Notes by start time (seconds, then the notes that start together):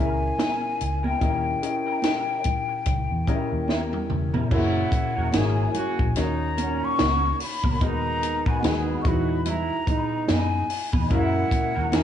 Already playing: G#3 C#4 E4 G#4 A#4
0.00 C#2 E4 A#4 E5 G#5
0.21 muted clean electric guitar stroke
0.38 G#3 C#4 E4 A#4, snare, closed hi-hat, high conga
0.80 C#2, muted clean electric guitar stroke, closed hi-hat
1.03 G#3 C#4 E4 A#4 G5, high conga
1.20 D#2 G3 C#4 E4 G4 A#4 D#5, kick, closed hi-hat, muted conga
1.62 C#4 E4 G4 A#4 D#5, muted clean electric guitar stroke, closed hi-hat
1.86 G3 C#4 E4 A#4
2.02 F#3 C4 D#4 A4, snare, closed hi-hat, high conga
2.19 G3 C#4 E4 A#4
2.44 muted clean electric guitar stroke, kick, closed hi-hat, low conga
2.68 muted clean electric guitar stroke
2.85 C#2, muted clean electric guitar stroke, kick, closed hi-hat, low conga
3.11 E2
3.27 G3 C#4 E4 G4 A#4 D#5, kick, closed hi-hat, muted conga, low conga
3.51 D#2, muted clean electric guitar stroke
3.68 G3 C#4 E4 A#4, snare, high conga
3.93 E2, high tom
4.10 E1, muted clean electric guitar stroke, mid tom
4.34 G3 C#4 E4 A#4, floor tom, high conga
4.51 F#1 C#3 F#3 A#3 C#4 E4 F#4 G#4 A#4 C#5 F#5, kick, crash, muted conga
4.92 muted clean electric guitar stroke, kick, closed hi-hat
5.16 E1 C#3 F#3 A#3 C#4 E4 F#4 A#4
5.32 G#1 F#3 G#3 A#3 C#4 E4 F#4 G#4 A#4 C#5, snare, closed hi-hat, high conga
5.37 G#5
5.74 C#3 A#3 F#4, muted clean electric guitar stroke, closed hi-hat, low conga
5.99 A#1, muted clean electric guitar stroke, kick
6.16 D#2 A#2 F#3 A#3 C#4 D#4 F#4 C#5 A#5, muted clean electric guitar stroke, snare, closed hi-hat
6.57 A#2 F#3 A#3 C#4 F#4 A#4, closed hi-hat, muted conga
6.81 C#6, muted clean electric guitar stroke
6.98 C#2 A#3 C#4 F#4 A#4, snare, closed hi-hat, high conga
7.39 B5, muted clean electric guitar stroke, open hi-hat
7.64 C#2 A#3 C#4 F#4 A#4, kick, high conga
7.80 D#2 B2 G#3 B3 D#4 F#4 A#4 B4 A#5, kick, closed hi-hat, muted conga
8.23 muted clean electric guitar stroke, closed hi-hat, muted conga
8.46 D#3 G#3 B3 D#4 F#4 B4 G#5, kick
8.63 D#2 D#3 G#3 B3 D#4 F#4 G#4 B4, snare, closed hi-hat, high conga
9.02 E2 F#3 G#3 D#4 E4 F#4 B4 C#6, muted clean electric guitar stroke, kick, closed hi-hat, low conga
9.08 B5
9.28 muted clean electric guitar stroke
9.45 B2 G#3 E4 A#5, muted clean electric guitar stroke, closed hi-hat, low conga
9.87 B2 G#3 B3 D#4 G#4 B4, kick, closed hi-hat, muted conga, low conga
10.11 muted clean electric guitar stroke
10.28 F#2 B3 D#4 G#4 B4 G#5, snare, closed hi-hat, high conga
10.69 muted clean electric guitar stroke, open hi-hat
10.93 E2 B3 D#4 G#4 B4, kick, high conga
11.09 F#2 C#3 F#3 G#3 A#3 C#4 E4 F#4 A#4, kick, closed hi-hat, muted conga
11.13 F#5
11.51 muted clean electric guitar stroke, kick, closed hi-hat, muted conga
11.75 D#2 C#3 F#3 A#3 C#4 E4 F#4 A#4
11.92 E2 F#3 G#3 C#4 E4 F#4 G#4 A#4, snare, closed hi-hat, high conga
11.96 G#5